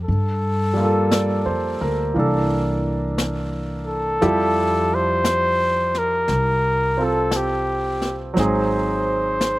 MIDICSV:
0, 0, Header, 1, 5, 480
1, 0, Start_track
1, 0, Key_signature, -1, "major"
1, 0, Tempo, 1036090
1, 33, Time_signature, 4, 2, 24, 8
1, 4443, End_track
2, 0, Start_track
2, 0, Title_t, "Trumpet"
2, 0, Program_c, 0, 56
2, 19, Note_on_c, 0, 69, 68
2, 968, Note_off_c, 0, 69, 0
2, 1792, Note_on_c, 0, 69, 83
2, 2289, Note_on_c, 0, 72, 92
2, 2296, Note_off_c, 0, 69, 0
2, 2771, Note_on_c, 0, 70, 77
2, 2778, Note_off_c, 0, 72, 0
2, 3261, Note_on_c, 0, 69, 68
2, 3268, Note_off_c, 0, 70, 0
2, 3411, Note_on_c, 0, 67, 66
2, 3418, Note_off_c, 0, 69, 0
2, 3799, Note_off_c, 0, 67, 0
2, 3896, Note_on_c, 0, 72, 77
2, 4443, Note_off_c, 0, 72, 0
2, 4443, End_track
3, 0, Start_track
3, 0, Title_t, "Grand piano"
3, 0, Program_c, 1, 0
3, 0, Control_c, 1, 64, 127
3, 40, Control_c, 1, 64, 0
3, 118, Control_c, 1, 64, 127
3, 341, Note_on_c, 1, 55, 40
3, 357, Note_on_c, 1, 58, 36
3, 374, Note_on_c, 1, 65, 39
3, 392, Note_on_c, 1, 69, 45
3, 515, Note_on_c, 1, 74, 39
3, 675, Note_on_c, 1, 72, 38
3, 816, Note_off_c, 1, 74, 0
3, 839, Note_on_c, 1, 70, 44
3, 923, Note_off_c, 1, 72, 0
3, 987, Note_off_c, 1, 55, 0
3, 992, Note_off_c, 1, 58, 0
3, 992, Note_on_c, 1, 52, 44
3, 999, Note_on_c, 1, 58, 38
3, 1000, Control_c, 1, 64, 0
3, 1003, Note_off_c, 1, 65, 0
3, 1008, Note_on_c, 1, 62, 41
3, 1009, Note_off_c, 1, 69, 0
3, 1016, Note_on_c, 1, 69, 50
3, 1085, Note_off_c, 1, 70, 0
3, 1089, Control_c, 1, 64, 127
3, 1951, Note_on_c, 1, 53, 47
3, 1953, Note_off_c, 1, 52, 0
3, 1954, Note_on_c, 1, 55, 42
3, 1956, Note_off_c, 1, 58, 0
3, 1956, Note_on_c, 1, 64, 42
3, 1956, Note_on_c, 1, 67, 50
3, 1958, Control_c, 1, 64, 0
3, 1961, Note_off_c, 1, 62, 0
3, 1965, Note_off_c, 1, 69, 0
3, 2029, Control_c, 1, 64, 127
3, 3231, Note_on_c, 1, 60, 37
3, 3238, Note_on_c, 1, 65, 34
3, 3247, Note_on_c, 1, 69, 41
3, 3862, Note_on_c, 1, 54, 48
3, 3863, Note_off_c, 1, 60, 0
3, 3870, Note_on_c, 1, 60, 44
3, 3872, Note_off_c, 1, 53, 0
3, 3873, Note_off_c, 1, 55, 0
3, 3874, Note_off_c, 1, 64, 0
3, 3875, Note_off_c, 1, 65, 0
3, 3875, Note_off_c, 1, 67, 0
3, 3879, Control_c, 1, 64, 0
3, 3880, Note_off_c, 1, 69, 0
3, 3880, Note_on_c, 1, 63, 44
3, 3888, Note_on_c, 1, 68, 52
3, 3974, Control_c, 1, 64, 127
3, 4443, Note_off_c, 1, 54, 0
3, 4443, Note_off_c, 1, 60, 0
3, 4443, Note_off_c, 1, 63, 0
3, 4443, Note_off_c, 1, 68, 0
3, 4443, End_track
4, 0, Start_track
4, 0, Title_t, "Upright bass"
4, 0, Program_c, 2, 32
4, 38, Note_on_c, 2, 43, 64
4, 657, Note_off_c, 2, 43, 0
4, 676, Note_on_c, 2, 41, 49
4, 824, Note_off_c, 2, 41, 0
4, 841, Note_on_c, 2, 38, 56
4, 986, Note_off_c, 2, 38, 0
4, 1000, Note_on_c, 2, 36, 61
4, 1938, Note_off_c, 2, 36, 0
4, 1956, Note_on_c, 2, 41, 67
4, 2896, Note_off_c, 2, 41, 0
4, 2911, Note_on_c, 2, 36, 64
4, 3853, Note_off_c, 2, 36, 0
4, 3874, Note_on_c, 2, 32, 68
4, 4443, Note_off_c, 2, 32, 0
4, 4443, End_track
5, 0, Start_track
5, 0, Title_t, "Drums"
5, 40, Note_on_c, 9, 25, 36
5, 516, Note_off_c, 9, 25, 0
5, 516, Note_on_c, 9, 25, 34
5, 516, Note_on_c, 9, 38, 36
5, 516, Note_on_c, 9, 44, 47
5, 563, Note_off_c, 9, 38, 0
5, 563, Note_off_c, 9, 44, 0
5, 997, Note_off_c, 9, 25, 0
5, 997, Note_on_c, 9, 25, 28
5, 1474, Note_off_c, 9, 25, 0
5, 1474, Note_on_c, 9, 25, 35
5, 1474, Note_on_c, 9, 38, 37
5, 1474, Note_on_c, 9, 44, 41
5, 1520, Note_off_c, 9, 38, 0
5, 1520, Note_off_c, 9, 44, 0
5, 1954, Note_off_c, 9, 25, 0
5, 1954, Note_on_c, 9, 25, 35
5, 1954, Note_on_c, 9, 38, 25
5, 2000, Note_off_c, 9, 38, 0
5, 2430, Note_off_c, 9, 25, 0
5, 2430, Note_on_c, 9, 25, 27
5, 2430, Note_on_c, 9, 38, 38
5, 2430, Note_on_c, 9, 44, 51
5, 2476, Note_off_c, 9, 38, 0
5, 2476, Note_off_c, 9, 44, 0
5, 2754, Note_on_c, 9, 38, 24
5, 2800, Note_off_c, 9, 38, 0
5, 2909, Note_off_c, 9, 25, 0
5, 2909, Note_on_c, 9, 25, 31
5, 2909, Note_on_c, 9, 38, 25
5, 2955, Note_off_c, 9, 38, 0
5, 3389, Note_off_c, 9, 25, 0
5, 3389, Note_on_c, 9, 25, 32
5, 3389, Note_on_c, 9, 38, 36
5, 3389, Note_on_c, 9, 44, 45
5, 3435, Note_off_c, 9, 38, 0
5, 3435, Note_off_c, 9, 44, 0
5, 3713, Note_on_c, 9, 38, 22
5, 3760, Note_off_c, 9, 38, 0
5, 3876, Note_off_c, 9, 25, 0
5, 3876, Note_on_c, 9, 25, 30
5, 3876, Note_on_c, 9, 38, 25
5, 3922, Note_off_c, 9, 38, 0
5, 4358, Note_off_c, 9, 25, 0
5, 4358, Note_on_c, 9, 25, 29
5, 4358, Note_on_c, 9, 38, 36
5, 4358, Note_on_c, 9, 44, 41
5, 4404, Note_off_c, 9, 38, 0
5, 4404, Note_off_c, 9, 44, 0
5, 4443, Note_off_c, 9, 25, 0
5, 4443, End_track
0, 0, End_of_file